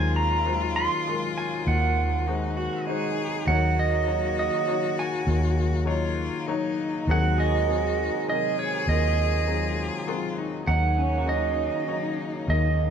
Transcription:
Already playing: D#2 C3 D#3 F#3 G#3 D#4 F4 C5 G#5
0.16 A#5
0.45 F#3 G#3 C5
0.76 C6
1.07 F#3 G#3 A#4
1.38 G#5
1.66 D#2 D#3 F#5
2.27 G#3 D#4 F#4 C5
2.56 F#4
2.85 G#3 D#4 F#4 G#4
2.89 C5
3.46 D#2 C#3 F#3 A#3 D#4 F#4 F#5
3.50 D#3 C#5
3.79 D#5
4.07 F#3 D#4 C#5
4.39 D#5
4.67 F#3 D#4 C#5
4.99 G#5
5.27 D#2 D#3
5.86 F#3 D#4 F4 C#5
6.46 F#3 D#4 C#5
7.07 D#2 C3 D#3 F#3 G#3 C4 F#4 G#4 F#5
7.38 G#4 D#5
7.68 F#3 C4 G#4
8.27 C3 F#3 G#4 A#4 D#5
8.59 C#5
8.87 D#2 D#3 F4 D#5
9.47 F#3 C4 G#4
10.07 F#3 C4 F4 G#4
10.38 D#4
10.67 D#2 C#3 D#3 F#3 A#3 D#4 C#5 F#5
10.98 C#4
11.18 F#4
11.27 F#3 D#4 C#5 D#5
11.88 F#3 D#4 C#5
12.47 D#2 D#3 C#4 D#5

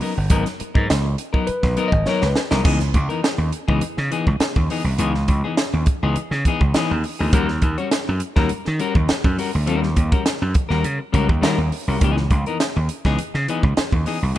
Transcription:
0.01 F#3 B3 D#4 A#4, open hi-hat
0.17 G1, muted clean electric guitar stroke
0.30 G#1 F#3 B3 D#4 A#4, kick, closed hi-hat
0.46 muted clean electric guitar stroke, snare, closed hi-hat
0.59 muted clean electric guitar stroke, muted slap bass stroke, closed hi-hat
0.74 G#2 F#3 B3 D#4 A#4, kick
0.88 C#2, muted clean electric guitar stroke, snare, closed hi-hat
1.04 muted clean electric guitar stroke
1.18 closed hi-hat
1.33 F#3 B3 D#4 A#4, kick
1.47 B4, muted slap bass stroke, closed hi-hat
1.63 B1, muted clean electric guitar stroke, kick, snare
1.77 F#3 B3 D#4 A#4, closed hi-hat
1.88 D#5
1.92 G#1, muted clean electric guitar stroke, kick
2.06 F#3 B3 D#4 A#4 C#5, muted slap bass stroke, snare
2.22 C#2 B4, snare
2.36 muted clean electric guitar stroke, snare
2.51 C2 F#3 B3 D#4 A#4, snare
2.64 C#2 E3 B3 D#4 G#4, kick, crash
2.81 muted clean electric guitar stroke, snare, closed hi-hat
2.94 C#2, muted clean electric guitar stroke, kick, closed hi-hat
3.09 E3 B3 D#4 A#4, closed hi-hat
3.23 muted clean electric guitar stroke, snare, closed hi-hat
3.38 D#2, muted clean electric guitar stroke
3.52 closed hi-hat
3.68 C#2 E3 B3 D#4 G#4, kick
3.81 muted slap bass stroke, closed hi-hat
3.97 C#3, muted clean electric guitar stroke, snare
4.11 E3 B3 D#4 G#4, closed hi-hat
4.27 C#2, muted clean electric guitar stroke, kick
4.40 muted slap bass stroke, muted clean electric guitar stroke, snare, closed hi-hat
4.56 D#2, kick
4.70 E3 B3 D#4 G#4, open hi-hat
4.84 C2
4.98 C#2 E3 B3 D#4 G#4, closed hi-hat
5.14 muted clean electric guitar stroke, snare
5.28 C#2, muted clean electric guitar stroke, kick, closed hi-hat
5.44 E3 B3 D#4 G#4
5.57 muted clean electric guitar stroke, snare, closed hi-hat
5.73 D#2, muted clean electric guitar stroke
5.86 kick, closed hi-hat
6.03 C#2 E3 B3 D#4 G#4
6.16 muted slap bass stroke, closed hi-hat
6.31 C#3, muted clean electric guitar stroke, snare
6.45 E3 B3 D#4 G#4, kick, closed hi-hat
6.61 C#2, muted clean electric guitar stroke, kick
6.74 E3 B3 D#4 G#4, muted slap bass stroke, snare, closed hi-hat
6.91 D#2
7.04 muted clean electric guitar stroke, open hi-hat
7.19 D2 E3 B3 D#4 G#4
7.33 D#2 G3 C#4 F#4 A#4, kick, closed hi-hat
7.48 muted clean electric guitar stroke, snare
7.62 D#2, muted clean electric guitar stroke, kick, closed hi-hat
7.78 G3 C#4 F#4 C#5, closed hi-hat
7.91 muted clean electric guitar stroke, snare, closed hi-hat
8.08 F#2, muted clean electric guitar stroke
8.20 closed hi-hat
8.36 D#2 G3 C#4 F#4 A#4, kick, snare
8.49 muted slap bass stroke, closed hi-hat
8.65 D#3, muted clean electric guitar stroke, snare
8.79 G3 C#4 F#4 A#4, closed hi-hat
8.95 D#2, muted clean electric guitar stroke, kick
9.08 muted clean electric guitar stroke, muted slap bass stroke, snare, closed hi-hat
9.24 F#2, kick
9.38 G3 C#4 F#4 A#4, open hi-hat
9.53 D2, muted clean electric guitar stroke
9.66 D#2 G3 C#4 F#4 A#4, closed hi-hat
9.82 muted clean electric guitar stroke, snare
9.96 D#2, muted clean electric guitar stroke, kick, closed hi-hat
10.12 G3 C#4 F#4 A#4, kick, closed hi-hat
10.25 muted clean electric guitar stroke, snare, closed hi-hat
10.41 F#2, muted clean electric guitar stroke
10.54 kick, closed hi-hat
10.69 D#2 G3 C#4 F#4 A#4, snare
10.84 C#3, closed hi-hat
10.99 muted clean electric guitar stroke
11.12 C#2 G3 C#4 F#4 A#4, kick, closed hi-hat
11.29 D#2, muted clean electric guitar stroke, kick
11.41 D#3 G3 C#4 F#4 A#4, snare, closed hi-hat
11.58 D#2
11.71 muted clean electric guitar stroke, open hi-hat
11.88 C2 G3 C#4 F#4 A#4
12.01 C#2 E3 B3 D#4 G#4, kick, closed hi-hat
12.17 muted clean electric guitar stroke, snare
12.29 C#2, muted clean electric guitar stroke, kick, closed hi-hat
12.46 E3 B3 D#4 A#4, closed hi-hat
12.60 muted clean electric guitar stroke, snare, closed hi-hat
12.76 D#2, muted clean electric guitar stroke
12.89 closed hi-hat
13.05 C#2 E3 B3 D#4 G#4, kick, snare
13.19 muted slap bass stroke, closed hi-hat
13.34 C#3, muted clean electric guitar stroke, snare
13.48 E3 B3 D#4 G#4, closed hi-hat
13.63 C#2, muted clean electric guitar stroke, kick
13.77 muted clean electric guitar stroke, muted slap bass stroke, snare, closed hi-hat
13.92 D#2, kick
14.06 E3 B3 D#4 G#4, open hi-hat
14.22 C2
14.35 E3

